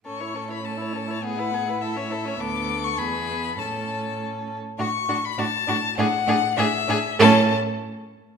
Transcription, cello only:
X:1
M:2/4
L:1/8
Q:1/4=101
K:A
V:1 name="Cello" clef=bass
A,,4- | A,,4 | D,,2 E,,2 | A,,3 z |
A,, A,, A,, A,, | A,, A,, A,, A,, | A,, z3 |]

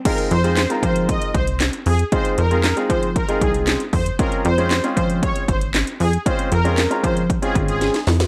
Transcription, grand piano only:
X:1
M:4/4
L:1/16
Q:1/4=116
K:Fm
V:1 name="Grand piano"
[A,CEFA]2 z [A,CEFA] z [A,CEFB]4- [A,CEFB] z6 | [A,CEFA]2 z [A,CEFA] z [A,CEFA]2 z2 [A,CEFA]4 z3 | [A,CDFA]2 z [A,CDFA] z [A,CDFA]4- [A,CDFA] z6 | [A,CDFA]2 z [A,CDFA] z [A,CDFB]2 z2 [A,CDFA]4 z3 |]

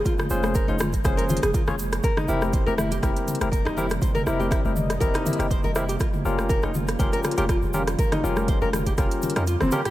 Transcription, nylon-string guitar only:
X:1
M:4/4
L:1/16
Q:"Swing 16ths" 1/4=121
K:Cphr
V:1 name="Nylon-string guitar"
F z3 B E F z c B F A F z3 | B E =E z c B E G E z3 B _E =E z | c B =E G E z3 B _E =E z c B E G | F z3 B E F z c B F G F z3 |
B E F z c B F G F z2 E F C G G |]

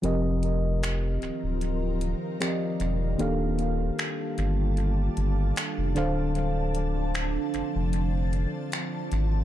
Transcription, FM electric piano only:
X:1
M:4/4
L:1/8
Q:"Swing 16ths" 1/4=76
K:Fmix
V:1 name="FM electric piano"
[F,CGBe]6 [F,CGBde]2 | [E,B,DGAf]6- [E,B,DGAf] [D,DAcf]- | [D,DAcf]6- [D,DAcf] z |]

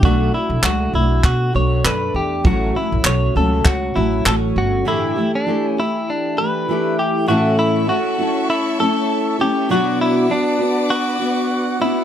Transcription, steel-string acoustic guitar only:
X:1
M:4/4
L:1/8
Q:"Swing 16ths" 1/4=99
K:Amix
V:1 name="Steel-string acoustic guitar"
[B,,F,A,DF] [A,DF] [F,A,DF] [A,DF]2 [A,DF] [A,D]2 | [A,,E,F,A,CF] [F,A,CF] [F,A,CF] [F,A,CF]2 [F,A,CF] [F,A,CF]2 | [A,,D,E,A,EG] [E,A,EG] [E,A,EG] [E,A,EG]2 [E,A,EG] [E,A,EG]2 | [A,,E,A,CEA]2 [A,CEA] [A,CEA]2 [A,CEA]2 [A,CEA] |
[B,,F,B,DF]2 [F,B,DF] [B,DF]2 [B,DF]2 [B,DF] |]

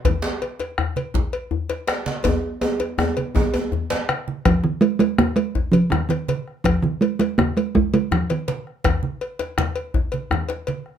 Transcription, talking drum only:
X:1
M:12/8
L:1/8
Q:3/8=109
K:Ebmix
V:1 name="Talking drum" clef=bass
z12 | z12 | F, E, A, A, B, A,2 F, E, E,2 z | F, E, A, A, B, A, A, A, F, E,2 z |
z12 |]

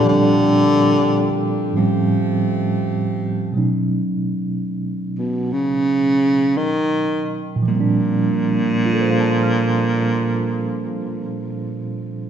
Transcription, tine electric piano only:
X:1
M:4/4
L:1/16
Q:"Swing" 1/4=59
K:Bb
V:1 name="Tine electric piano"
A z12 z3 | z16 | z4 [FAcfac'f']12 |]
V:2 name="Tine electric piano" clef=bass
[B,,F,G,CD]8 [A,,^E,G,^B,^C]8 | [=B,,^F,A,_D^D]16 | [B,,F,G,CD]16 |]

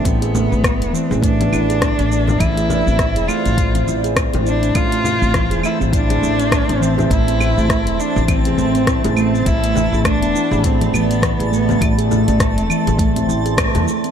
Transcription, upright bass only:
X:1
M:4/4
L:1/16
Q:"Swing 16ths" 1/4=102
K:Am
V:1 name="Upright bass" clef=bass
A,,,3 A,,,2 E,,, z A,,,3 A,,,3 A,,,3 | A,,,3 A,,,2 E,,, z A,,,3 A,,,3 A,,,3 | A,,,3 A,,,2 E,,, z A,,,3 A,,,3 A,,,3 | A,,,3 A,,,2 E,,, z A,,,3 A,,,3 A,,,3 |
A,,,3 A,,,2 E,,, z A,,,3 A,,,3 A,,,3 | A,,,3 A,,,2 E,,, z A,,,3 A,,,3 E,, z2 |]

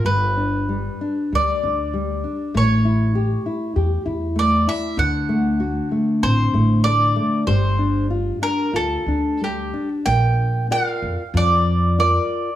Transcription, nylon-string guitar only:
X:1
M:4/4
L:1/8
Q:1/4=96
K:Dphr
V:1 name="Nylon-string guitar"
G, D G, D G, D G, D | A, =E G E G E A, E | D, A, ^F A, C A, A A, | G, D F D F D G, D |
[K:Bb] B,2 [FBd]2 F,2 [FBd]2 |]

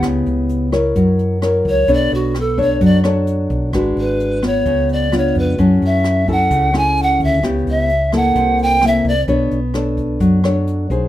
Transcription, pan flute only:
X:1
M:4/4
L:1/8
Q:1/4=130
K:Bdor
V:1 name="Pan flute"
z6 z c | d F A c d z3 | z B2 c2 d c B | z e2 f2 g f e |
z e2 f2 =g e d | z8 |]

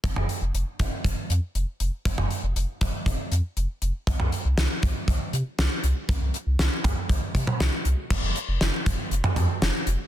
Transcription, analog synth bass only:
X:1
M:4/4
L:1/16
Q:1/4=119
K:Cphr
V:1 name="Analog synth bass" clef=bass
F,,, F,,, z F,,, F,,, z F,,, z F,,, z F,, z F,,, z F,,, z | F,,, F,,, z F,,, F,,, z F,,, z F,,, z F,, z F,,, z F,,, z | C,, C,, z C,, C,, z C,, z C,, z C, z C,, z C,, z | C,, C,, z C,, C,, z C,, z C,, z C, z C,, z C,, z |
F,,, F,,, z F,,, F,,, z F,,, z F,,, z F,, z F,,, z F,,, z |]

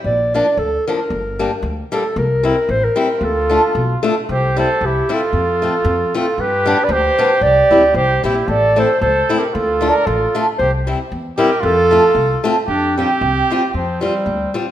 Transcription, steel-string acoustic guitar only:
X:1
M:2/4
L:1/8
Q:"Swing" 1/4=114
K:F
V:1 name="Steel-string acoustic guitar"
z [F,B,D] z [F,B,D] | z [G,B,D] z [G,B,D] | z [G,CE] z [G,CE] | z [A,DF] z [A,DF] |
z [G,CE] z [G,CE] | z [A,CF] z [A,CF] | z [G,=B,D] z [G,B,D] | z [G,CE] z [G,CE] |
z [A,CE] z [A,CE] | z [A,DF] z [A,DF] | z [G,CE] z [G,CE] | z [A,CF] z [A,CF] |
z [G,CF] z [G,CF] | z [G,CF] z [G,CF] |]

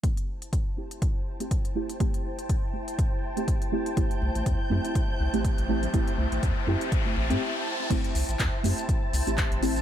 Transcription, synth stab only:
X:1
M:4/4
L:1/16
Q:"Swing 16ths" 1/4=122
K:Am
V:1 name="Synth stab"
[A,CEG]2 z4 [A,CEG]4- [A,CEG] [A,CEG]3 [A,CEG] z | [A,CEG]2 z4 [A,CEG]4- [A,CEG] [A,CEG]3 [A,CEG] z | [A,CEG]2 z4 [A,CEG]4- [A,CEG] [A,CEG]3 [A,CEG] z | [A,CEG]2 z4 [A,CEG]4- [A,CEG] [A,CEG] z4 |
[A,CEG]2 z4 [A,CEG]4- [A,CEG] [A,CEG]3 [A,CEG] z |]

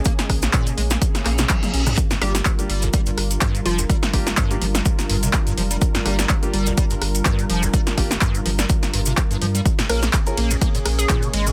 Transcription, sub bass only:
X:1
M:4/4
L:1/8
Q:"Swing 16ths" 1/4=125
K:Gphr
V:1 name="Sub bass" clef=bass
z B,,, z B,,, z B,,, z B,,, | z G,,, z G,,, z G,,, z F,,, | z G,,, z G,,, z G,,, z F,,, | z G,,, z G,,, z G,,, z F,,, |
z G,,, z G,,, z G,,, z G,, | z B,,, z B,,, z B,,, z A,,, |]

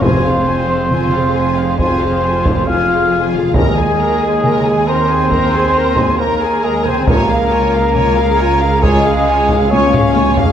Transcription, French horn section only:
X:1
M:4/4
L:1/16
Q:1/4=68
K:Fphr
V:1 name="French horn section"
C8 C4 F4 | A,6 C6 B,2 A, C | B,8 A,4 D4 |]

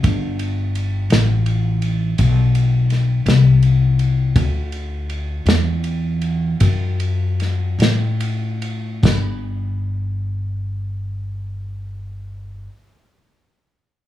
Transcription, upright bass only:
X:1
M:12/8
L:1/8
Q:3/8=52
K:Dmix
V:1 name="Upright bass" clef=bass
G,,,3 A,,,3 B,,,3 C,,3 | D,,3 E,,3 F,,3 A,,3 | G,,,12 |]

